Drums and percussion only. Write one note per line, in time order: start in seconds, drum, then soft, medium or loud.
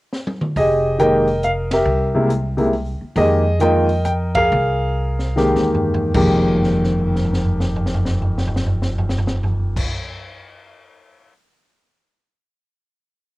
0.12 snare medium
0.27 high tom medium
0.41 mid tom medium
0.56 kick soft
0.56 open hi-hat soft
0.99 closed hi-hat soft
1.28 open hi-hat soft
1.43 closed hi-hat soft
1.71 snare medium
1.71 ride medium
2.30 closed hi-hat soft
2.58 open hi-hat soft
2.73 open hi-hat soft
3.16 kick soft
3.16 open hi-hat soft
3.60 closed hi-hat soft
3.89 open hi-hat soft
4.05 closed hi-hat medium
4.35 kick medium
4.35 ride medium
5.19 snare soft
5.37 snare medium
5.56 snare medium
5.75 floor tom medium
5.94 floor tom medium
6.14 kick loud
6.14 crash medium
6.55 floor tom soft
6.64 snare soft
6.72 floor tom soft
6.84 snare soft
6.99 floor tom soft
7.16 snare soft
7.25 floor tom soft
7.33 snare medium
7.45 floor tom soft
7.60 snare medium
7.76 floor tom medium
7.86 snare medium
7.94 floor tom medium
8.05 snare medium
8.22 floor tom medium
8.38 snare medium
8.47 floor tom medium
8.56 snare medium
8.66 floor tom medium
8.82 snare medium
8.98 floor tom medium
9.09 snare medium
9.18 floor tom medium
9.27 snare medium
9.43 floor tom medium
9.76 kick loud
9.76 crash loud